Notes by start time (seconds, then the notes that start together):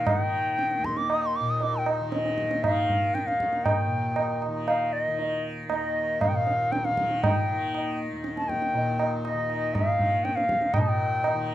Already playing: D#2 A#2 D#3
0.07 F#5, tabla na, tabla ge
0.18 D#3 G5
0.59 tabla te
0.71 tabla te
0.79 D#2
0.84 C6, tabla ke
0.97 D6, tabla te
1.10 D#6, tabla na
1.22 C6
1.36 D6
1.40 A#2
1.50 D#6
1.61 D6, tabla tin
1.76 G5
1.86 tabla na
2.01 D#3
2.12 D#5, tabla te
2.25 tabla te
2.38 tabla ke
2.51 tabla te
2.63 D#3 F5, tabla na, tabla ge
2.90 tabla ge
3.14 G5, tabla te
3.24 D#2 F5, tabla te
3.40 tabla ke
3.53 tabla te
3.64 G5, tabla na, tabla ge
3.86 A#2
4.16 tabla na
4.42 tabla na
4.48 D#3
4.67 F5, tabla na
4.92 D#5
5.08 D#3
5.19 tabla tin
5.69 D#2 D#5, tabla na
6.21 F5, tabla na, tabla ge
6.28 A#2 G5
6.35 F5
6.47 tabla te
6.72 G5, tabla te
6.85 F5, tabla te
6.91 D#3
6.97 tabla ke
7.11 tabla te
7.23 G5, tabla na, tabla ge
7.52 D#3
7.74 tabla na
8.13 D#2
8.24 tabla te
8.37 A5, tabla te
8.49 G5, tabla ke
8.62 tabla te
8.73 A#2, tabla tin
9.00 tabla na
9.25 D#5, tabla na
9.34 D#3
9.50 tabla na
9.74 F5, tabla na, tabla ge
9.93 D#3
10.00 tabla ge
10.24 G5, tabla te
10.35 F5, tabla te
10.49 D#2, tabla ke
10.62 tabla te
10.74 A#2 G5, tabla na, tabla ge
10.79 A5
10.88 G5
11.24 tabla na
11.34 D#3